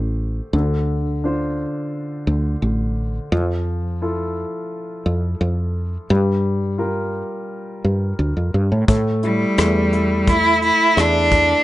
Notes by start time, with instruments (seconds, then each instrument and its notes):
Already playing: fretless electric bass A1, grand piano A3 G4 A4 C5
0.53 fretless electric bass D2, grand piano D3
1.24 grand piano D4 F4 C5
2.27 fretless electric bass D2
2.62 fretless electric bass A1
3.32 fretless electric bass F2, grand piano F3
4.02 grand piano E4 F4 A4
5.06 fretless electric bass F2
5.41 fretless electric bass F2
6.10 fretless electric bass G2, grand piano G3
6.78 grand piano F4 G4 A#4
7.84 fretless electric bass G2
8.19 fretless electric bass D2
8.37 fretless electric bass F2
8.54 fretless electric bass G2
8.72 fretless electric bass A2
8.88 fretless electric bass A2, grand piano A3, kick, closed hi-hat
9.23 cello G3, grand piano E4, closed hi-hat
9.58 fretless electric bass E2, grand piano A3, cross-stick, closed hi-hat
9.93 grand piano E4, closed hi-hat
10.27 grand piano A3, cello E4, kick, closed hi-hat
10.62 cello E4, closed hi-hat
10.96 fretless electric bass E2, cello D4, grand piano E4, cross-stick, closed hi-hat
11.31 kick, closed hi-hat